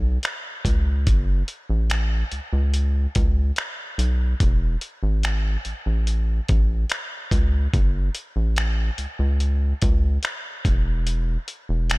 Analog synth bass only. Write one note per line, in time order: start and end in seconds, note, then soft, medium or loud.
0.00 0.18 B1 loud
0.65 1.09 C#2 medium
1.07 1.43 F#1 loud
1.70 2.24 A1 medium
2.32 2.40 C#2 soft
2.53 3.07 C#2 medium
3.16 3.52 C#2 medium
3.98 4.34 B1 medium
4.41 4.76 E1 loud
5.03 5.57 G#1 loud
5.65 5.74 A1 soft
5.86 6.40 A1 medium
6.49 6.85 A1 medium
7.32 7.68 C#2 medium
7.74 8.10 F#1 loud
8.36 8.90 A1 medium
8.98 9.07 C#2 soft
9.19 9.73 C#2 medium
9.83 10.18 C#2 medium
10.65 11.37 E1 loud
11.69 11.98 E1 medium